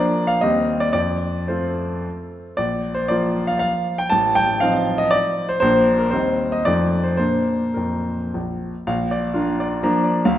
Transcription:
0.00 0.39 F3 medium
0.00 0.39 A#3 medium
0.00 0.39 D4 medium
0.00 0.29 D5 medium
0.27 0.42 F5 medium
0.41 0.93 D#2 medium
0.41 0.91 G3 soft
0.41 0.91 C4 soft
0.41 0.91 G4 soft
0.41 0.81 D#5 loud
0.80 0.91 D5 medium
0.93 1.47 F2 medium
0.93 1.48 D5 medium
1.48 2.54 A3 soft
1.48 2.54 C4 soft
1.48 2.54 F4 soft
1.48 2.04 C5 medium
2.57 3.09 A#1 medium
2.57 2.96 D5 medium
2.94 3.09 C5 medium
3.08 4.08 F3 soft
3.08 4.08 A#3 soft
3.08 4.09 F4 soft
3.08 3.49 D5 medium
3.47 3.58 F5 medium
3.59 3.98 F5 medium
3.98 4.11 G5 medium
4.10 4.60 A1 medium
4.10 4.35 A5 loud
4.35 4.61 G5 loud
4.60 5.57 F3 soft
4.60 5.57 C4 medium
4.60 5.58 D#4 medium
4.60 5.00 F5 medium
4.98 5.12 D#5 medium
5.11 5.48 D5 loud
5.49 5.59 C5 medium
5.60 6.11 A#1 medium
5.60 6.08 F3 soft
5.60 6.09 A#3 medium
5.60 6.09 D4 medium
5.60 5.98 C5 loud
5.98 6.12 A#4 medium
6.11 6.65 D#2 medium
6.11 6.62 G3 soft
6.11 6.62 C4 soft
6.11 6.63 D#4 soft
6.11 6.52 C5 medium
6.52 6.66 D#5 medium
6.65 7.18 F2 medium
6.65 7.15 F3 soft
6.65 7.16 A3 soft
6.65 7.16 D#4 soft
6.65 7.05 D5 medium
7.03 7.16 C5 medium
7.17 7.59 A#2 soft
7.17 7.65 A#3 soft
7.17 7.65 D4 soft
7.17 7.76 C5 medium
7.74 8.18 F2 soft
7.74 8.34 A#4 soft
8.34 8.72 A#1 soft
8.87 9.33 A#1 medium
8.87 9.25 F5 medium
9.11 9.49 D5 medium
9.34 9.79 A#3 medium
9.34 9.78 D4 medium
9.34 9.73 F4 medium
9.60 9.96 D5 medium
9.83 10.22 F3 medium
9.83 10.22 A#3 medium
9.83 10.22 D4 medium
9.83 10.18 A#5 medium
10.04 10.25 D5 medium
10.25 10.38 D2 medium
10.25 10.38 F5 medium

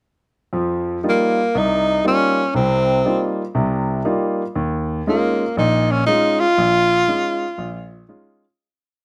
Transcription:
0.53 0.97 F2 medium
0.53 0.97 F3 medium
1.04 1.39 G3 soft
1.04 1.39 A#3 soft
1.04 1.39 D#4 soft
1.04 1.39 F4 soft
1.09 1.60 A#3 medium
1.55 1.98 C2 medium
1.55 2.07 D#4 medium
2.04 2.40 G3 soft
2.04 2.40 A#3 soft
2.04 2.53 C#4 medium
2.04 2.40 D#4 soft
2.04 2.40 F4 medium
2.54 2.99 C2 medium
2.54 2.99 C3 medium
2.54 3.36 C4 medium
3.05 3.41 G3 soft
3.05 3.41 A#3 soft
3.05 3.41 D#4 soft
3.05 3.41 F4 medium
3.55 3.99 C2 medium
3.55 3.99 C3 medium
4.05 4.41 G3 medium
4.05 4.41 A#3 soft
4.05 4.41 D#4 soft
4.05 4.41 F4 medium
4.55 5.00 D#2 medium
5.07 5.43 G#3 soft
5.07 5.55 A#3 medium
5.07 5.43 C#4 soft
5.07 5.43 D#4 soft
5.07 5.43 F4 medium
5.57 6.01 A#1 medium
5.57 6.01 A#2 medium
5.57 5.93 D#4 medium
5.91 6.06 C#4 medium
6.06 6.43 G#3 medium
6.06 6.43 C#4 soft
6.06 6.41 D#4 medium
6.06 6.43 D#4 soft
6.06 6.44 F4 medium
6.40 8.08 F4 loud
6.58 7.02 A#1 medium
7.08 7.43 G#3 soft
7.08 7.44 C#4 soft
7.08 7.44 D#4 soft
7.08 7.44 F4 medium
7.58 8.02 A#1 medium
8.09 8.44 G#3 soft
8.09 8.44 C#4 soft
8.09 8.44 D#4 soft
8.09 8.44 F4 medium

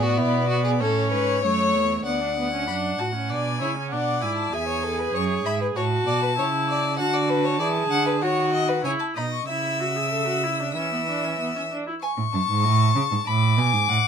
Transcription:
0.00 0.20 A2 medium
0.00 0.82 B3 medium
0.00 0.19 F#4 medium
0.00 0.81 D5 medium
0.17 0.82 B2 medium
0.17 0.48 E4 medium
0.48 0.63 F#4 medium
0.64 0.70 G#4 medium
0.80 1.14 A2 medium
0.80 1.43 C#4 medium
0.80 1.10 A4 medium
0.80 2.05 C#5 medium
1.11 1.45 G#2 medium
1.11 1.42 B4 medium
1.42 1.76 F#2 medium
1.42 2.05 A3 medium
1.42 2.04 C#5 medium
1.74 2.05 E2 medium
2.05 2.69 D2 medium
2.05 2.20 B3 medium
2.05 2.64 D5 medium
2.05 3.32 F#5 medium
2.22 2.28 D4 medium
2.37 2.52 B3 medium
2.53 2.68 C#4 medium
2.67 2.99 F#2 medium
2.67 3.01 D4 medium
2.67 2.75 B5 medium
2.98 3.32 A2 medium
2.98 3.14 F#4 medium
2.98 3.06 A5 medium
3.15 3.32 C#4 medium
3.30 3.62 B2 medium
3.30 3.61 D4 medium
3.30 3.60 D5 medium
3.30 3.90 G#5 medium
3.61 3.94 C#3 medium
3.61 3.76 E4 medium
3.61 3.69 C#5 medium
3.77 3.94 C#4 medium
3.91 4.24 B2 medium
3.91 4.22 D4 medium
3.91 4.55 D5 medium
3.91 4.23 F#5 medium
4.22 4.53 G#2 medium
4.22 4.54 E4 medium
4.22 4.36 G#5 medium
4.37 4.54 A5 medium
4.53 5.13 E2 medium
4.53 5.78 G#4 medium
4.53 4.67 E5 medium
4.53 5.14 G#5 medium
4.68 4.85 C#5 medium
4.83 5.00 A4 medium
4.99 5.16 B4 medium
5.14 5.44 F#2 medium
5.14 5.47 C#5 medium
5.14 5.24 C#6 medium
5.45 5.75 G#2 medium
5.45 5.60 E5 medium
5.45 5.54 B5 medium
5.61 5.67 B4 medium
5.76 6.06 A2 medium
5.76 6.37 F#4 medium
5.76 5.84 C#5 medium
5.76 6.97 A5 medium
6.07 6.40 B2 medium
6.07 6.22 D5 medium
6.23 6.29 B4 medium
6.38 7.01 C#3 medium
6.38 6.98 E4 medium
6.38 6.46 C#5 medium
6.68 6.98 D5 medium
6.98 7.61 D3 medium
6.98 7.60 F#4 medium
6.98 7.15 F#5 medium
6.98 8.23 A5 medium
7.14 7.31 D5 medium
7.29 7.46 B4 medium
7.44 7.59 C#5 medium
7.59 7.90 E3 medium
7.59 8.24 G#4 medium
7.59 7.67 D5 medium
7.90 8.23 D3 medium
7.90 8.06 F#5 medium
8.07 8.13 B4 medium
8.22 8.84 D#3 medium
8.22 8.84 F#4 medium
8.22 8.52 C#5 medium
8.22 8.84 F#5 medium
8.53 8.70 D#5 medium
8.68 8.83 B4 medium
8.84 8.93 C#3 medium
8.84 9.15 E4 medium
8.84 8.92 C#5 medium
8.84 8.91 G#5 medium
8.99 9.06 A5 medium
9.15 9.47 B2 medium
9.15 9.24 D#4 medium
9.15 9.47 D#5 medium
9.15 9.23 B5 medium
9.32 9.48 C#6 medium
9.48 10.76 C#3 medium
9.48 9.82 E4 medium
9.48 10.73 E5 medium
9.48 10.73 E6 medium
9.80 9.98 F#4 medium
9.96 10.11 G#4 medium
10.12 10.27 A4 medium
10.28 10.45 F#4 medium
10.44 10.62 E4 medium
10.60 10.76 D4 medium
10.75 11.70 E3 medium
10.75 10.92 C#4 medium
10.75 11.69 E5 medium
10.75 11.68 E6 medium
10.92 10.98 B3 medium
11.08 11.26 D4 medium
11.24 11.39 C#4 medium
11.40 11.55 B3 medium
11.56 11.62 C#4 medium
11.72 11.87 D4 medium
11.87 11.93 E4 medium
12.02 12.10 G#5 medium
12.02 13.23 C#6 medium
12.18 12.24 A2 medium
12.33 12.40 F#2 medium
12.33 13.28 A5 medium
12.49 12.66 G#2 medium
12.64 12.95 A2 loud
12.96 13.02 C#3 medium
13.12 13.18 G#2 medium
13.27 13.59 A2 loud
13.27 13.60 B5 medium
13.27 14.08 D6 loud
13.57 13.75 B2 medium
13.57 13.90 G#5 medium
13.73 13.88 G#2 medium
13.88 13.97 A2 medium
13.88 14.08 F#5 medium

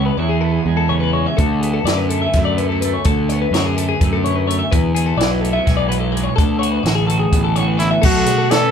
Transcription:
0.00 0.17 C#3 medium
0.00 0.44 B3 soft
0.06 0.18 B4 medium
0.17 0.58 E2 medium
0.17 1.34 E3 medium
0.17 1.35 E4 medium
0.17 0.30 C#5 medium
0.29 0.41 G#4 medium
0.41 0.90 B3 medium
0.41 0.52 A4 medium
0.52 0.77 G#4 medium
0.66 1.26 E2 medium
0.66 1.13 G#3 medium
0.77 0.89 A4 medium
0.89 1.34 C#3 medium
0.89 1.03 A3 medium
0.89 1.00 C#5 medium
1.00 1.38 B3 soft
1.00 1.13 B4 medium
1.13 1.35 G#3 medium
1.13 1.26 C#5 medium
1.26 1.38 E5 medium
1.37 1.78 D2 medium
1.37 2.58 D2 medium
1.37 1.61 A4 medium
1.37 kick medium
1.37 closed hi-hat medium
1.61 2.11 B3 medium
1.61 1.73 G#4 medium
1.61 closed hi-hat medium
1.74 1.85 A4 medium
1.84 2.25 F#2 medium
1.84 3.53 D3 medium
1.84 3.56 D4 medium
1.84 1.97 D5 medium
1.84 snare medium
1.84 closed hi-hat medium
1.97 2.09 B4 medium
2.09 2.24 A3 medium
2.09 2.21 A4 medium
2.09 closed hi-hat medium
2.22 2.58 B3 soft
2.22 2.45 E5 medium
2.33 2.94 F#2 medium
2.33 2.59 A3 soft
2.33 kick medium
2.33 snare soft
2.33 closed hi-hat medium
2.45 2.57 D5 medium
2.58 3.06 D2 medium
2.58 2.72 A3 soft
2.58 2.69 B4 medium
2.58 closed hi-hat soft
2.69 3.06 B3 soft
2.69 2.81 A4 medium
2.81 3.03 A3 medium
2.81 2.93 B4 medium
2.81 closed hi-hat medium
2.94 3.05 C#5 medium
3.04 3.45 D2 medium
3.04 4.25 D2 medium
3.04 3.29 A4 medium
3.04 kick loud
3.04 closed hi-hat medium
3.29 3.77 B3 medium
3.29 3.40 C#5 medium
3.29 closed hi-hat medium
3.42 3.53 B4 medium
3.51 3.92 F#2 medium
3.51 3.65 C#5 medium
3.51 snare medium
3.51 closed hi-hat medium
3.55 5.17 D3 medium
3.55 5.17 D4 medium
3.65 3.77 G#4 medium
3.77 4.27 B3 medium
3.77 3.88 A4 medium
3.77 closed hi-hat medium
3.89 4.12 G#4 medium
4.01 4.61 F#2 medium
4.01 4.47 A3 medium
4.01 kick medium
4.01 closed hi-hat medium
4.13 4.24 A4 medium
4.24 4.71 D2 medium
4.24 4.95 B3 medium
4.24 4.36 C#5 medium
4.24 closed hi-hat medium
4.36 4.47 B4 medium
4.47 4.69 A3 medium
4.47 4.58 C#5 medium
4.47 closed hi-hat medium
4.59 4.71 E5 medium
4.71 6.35 E2 medium
4.71 5.12 E2 medium
4.71 4.94 B4 medium
4.71 kick loud
4.71 closed hi-hat medium
4.95 5.41 B3 medium
4.95 5.06 G#4 medium
4.95 closed hi-hat medium
5.06 5.18 A4 medium
5.17 5.58 B1 medium
5.17 6.34 E3 medium
5.17 6.34 E4 medium
5.17 5.30 D5 medium
5.17 closed hi-hat medium
5.21 snare loud
5.30 5.41 B4 medium
5.41 5.53 A3 medium
5.41 5.54 A4 medium
5.41 closed hi-hat medium
5.53 5.89 B3 soft
5.53 5.76 E5 medium
5.66 6.27 B1 medium
5.66 6.12 G#3 medium
5.66 kick medium
5.66 snare soft
5.66 closed hi-hat medium
5.77 5.88 D5 medium
5.89 6.34 B2 medium
5.89 7.36 B3 medium
5.89 6.00 B4 medium
5.89 closed hi-hat medium
6.00 6.12 A4 medium
6.12 6.34 G#3 medium
6.12 6.24 B4 medium
6.17 closed hi-hat medium
6.24 6.35 C#5 medium
6.36 8.03 D2 medium
6.36 6.78 D2 medium
6.36 6.59 A4 medium
6.36 kick loud
6.36 closed hi-hat medium
6.59 6.85 F#4 medium
6.59 6.71 C#5 medium
6.59 closed hi-hat medium
6.71 6.83 B4 medium
6.83 7.24 A1 medium
6.83 6.95 C#5 medium
6.83 snare medium
6.83 closed hi-hat medium
6.87 8.71 D3 medium
6.87 7.10 F#4 medium
6.95 7.07 G#4 medium
7.07 7.57 F#4 medium
7.07 7.19 A4 medium
7.07 closed hi-hat medium
7.19 7.43 G#4 medium
7.32 7.92 A1 medium
7.32 7.81 B3 medium
7.32 kick medium
7.32 closed hi-hat medium
7.44 7.56 A4 medium
7.56 8.03 A2 medium
7.56 8.02 F#4 medium
7.56 7.67 C#5 medium
7.56 closed hi-hat soft
7.67 7.78 B4 medium
7.78 7.90 E4 medium
7.78 7.90 C#5 medium
7.78 snare soft
7.78 closed hi-hat medium
7.82 8.02 B3 medium
7.91 8.03 E5 medium
8.02 8.24 B1 medium
8.02 8.71 B2 medium
8.02 8.71 A3 soft
8.02 8.52 F#4 medium
8.02 8.26 A4 medium
8.02 kick loud
8.02 crash loud
8.26 8.71 D4 medium
8.26 8.38 G#4 medium
8.26 closed hi-hat medium
8.38 8.50 A4 medium
8.51 8.71 C#4 medium
8.51 8.71 A4 medium
8.51 8.62 D5 medium
8.51 snare loud
8.51 closed hi-hat medium
8.62 8.71 B4 medium

